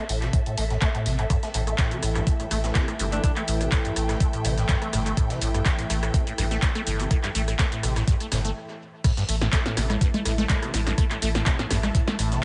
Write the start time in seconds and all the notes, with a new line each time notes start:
Already playing: A4 E5 A5
0.09 A1 A2, open hi-hat, tambourine
0.22 C3, snare, closed hi-hat
0.33 A2, kick, closed hi-hat, tambourine
0.46 A2, closed hi-hat
0.58 A1 A3, open hi-hat, tambourine
0.70 A2, snare, closed hi-hat
0.81 A3, kick, snare, clap, closed hi-hat, tambourine
0.95 A2, closed hi-hat
1.06 A1 C3, snare, open hi-hat, tambourine
1.19 A2, closed hi-hat
1.30 G2 E3 A3 E4, kick, cross-stick, closed hi-hat, tambourine, shaker
1.42 A3 G5, snare, closed hi-hat, shaker
1.54 A1 A2, open hi-hat, tambourine, shaker
1.67 A3, cross-stick, closed hi-hat, shaker
1.78 A2, kick, snare, clap, closed hi-hat, tambourine, shaker
1.91 C3, closed hi-hat, shaker
2.03 A1 A2, cross-stick, open hi-hat, tambourine, shaker
2.15 G2, cross-stick, closed hi-hat, shaker
2.27 A3, kick, closed hi-hat, tambourine, shaker
2.40 A2, closed hi-hat, shaker
2.51 A1 A3, cross-stick, open hi-hat, tambourine, shaker
2.64 A2, snare, closed hi-hat, shaker
2.75 C3, kick, snare, clap, closed hi-hat, tambourine, shaker
2.88 A2, cross-stick, closed hi-hat, shaker
2.99 G1 G2, open hi-hat, tambourine, shaker
3.12 A3 D4, closed hi-hat, shaker
3.24 A2 D4, kick, cross-stick, closed hi-hat, tambourine, shaker
3.36 A3, clap, closed hi-hat, shaker
3.48 A1 A2, open hi-hat, tambourine, shaker
3.61 C3, cross-stick, closed hi-hat, shaker
3.71 A2, kick, snare, clap, closed hi-hat, tambourine, shaker
3.85 G2, closed hi-hat, shaker
3.96 A1 A3, cross-stick, open hi-hat, tambourine, shaker
4.09 A2, cross-stick, snare, closed hi-hat, shaker
4.20 A3, kick, closed hi-hat, tambourine, shaker
4.33 A2, closed hi-hat, shaker
4.45 A1 C3, cross-stick, open hi-hat, tambourine, shaker
4.58 A2, snare, closed hi-hat, shaker
4.68 G2, kick, snare, clap, closed hi-hat, tambourine, shaker
4.82 A3, cross-stick, closed hi-hat, shaker
4.93 G1 A2, cross-stick, snare, open hi-hat, tambourine, shaker
5.06 A3, closed hi-hat, shaker
5.17 A2, kick, cross-stick, closed hi-hat, tambourine, shaker
5.30 C3, snare, closed hi-hat, shaker
5.41 A1 A2, open hi-hat, tambourine, shaker
5.54 G2, cross-stick, closed hi-hat, shaker
5.65 A3, kick, snare, clap, closed hi-hat, tambourine, shaker
5.79 A2, closed hi-hat, shaker
5.90 A1 A3, cross-stick, open hi-hat, tambourine, shaker
6.03 A2, cross-stick, closed hi-hat, shaker
6.14 C3, kick, closed hi-hat, tambourine, shaker
6.27 A2, closed hi-hat, shaker
6.38 A1 G2, cross-stick, open hi-hat, tambourine, shaker
6.51 A3, snare, closed hi-hat, shaker
6.62 A2, kick, snare, clap, closed hi-hat, tambourine, shaker
6.75 A3, cross-stick, closed hi-hat, shaker
6.87 G1 A2, open hi-hat, tambourine, shaker
7.00 C3, closed hi-hat, shaker
7.11 A2, kick, cross-stick, closed hi-hat, tambourine, shaker
7.23 G2, clap, closed hi-hat, shaker
7.35 A1 A3, open hi-hat, tambourine, shaker
7.48 A2, cross-stick, closed hi-hat, shaker
7.59 A3, kick, snare, clap, closed hi-hat, tambourine, shaker
7.72 A2, closed hi-hat, shaker
7.83 A1 C3, cross-stick, open hi-hat, tambourine, shaker
7.96 A2, cross-stick, snare, closed hi-hat, shaker
8.08 G2, kick, closed hi-hat, tambourine, shaker
8.20 A3, closed hi-hat, shaker
8.32 G1 A2, cross-stick, snare, open hi-hat, tambourine, shaker
8.45 A3, closed hi-hat, shaker
9.04 A2 E3 A3 E4, kick, cross-stick, closed hi-hat, crash, tambourine, shaker
9.17 G2, snare, closed hi-hat, shaker
9.29 A1 A3, open hi-hat, tambourine, shaker
9.41 A2, cross-stick, snare, closed hi-hat, shaker
9.52 A3, kick, snare, clap, closed hi-hat, tambourine, shaker
9.66 A2, snare, closed hi-hat, shaker
9.77 A1 C3 A5, cross-stick, snare, open hi-hat, tambourine, shaker
9.90 A2, cross-stick, closed hi-hat, low conga, shaker
10.01 G2, kick, closed hi-hat, tambourine, shaker
10.14 A3, closed hi-hat, low conga, shaker
10.25 A1 A2, cross-stick, open hi-hat, tambourine, shaker
10.38 A3, snare, closed hi-hat, low conga, shaker
10.49 A2, kick, snare, clap, closed hi-hat, tambourine, low conga, shaker
10.62 C3, cross-stick, closed hi-hat, shaker
10.74 A1 A2, snare, open hi-hat, tambourine, shaker
10.87 G2, snare, closed hi-hat, shaker
10.98 A3, kick, cross-stick, closed hi-hat, tambourine, shaker
11.10 A2, clap, closed hi-hat, shaker
11.22 A1 A3, open hi-hat, tambourine, shaker
11.35 A2, cross-stick, snare, closed hi-hat, shaker
11.46 C3, kick, snare, clap, closed hi-hat, tambourine, shaker
11.59 A2, snare, closed hi-hat, shaker
11.70 A1 G2, cross-stick, snare, open hi-hat, tambourine, shaker
11.83 A3, cross-stick, snare, closed hi-hat, low conga, shaker
11.95 A2, kick, closed hi-hat, tambourine, shaker
12.08 A3, snare, closed hi-hat, low conga, shaker
12.19 A1 A2, cross-stick, open hi-hat, tambourine, shaker
12.32 C3, snare, closed hi-hat, shaker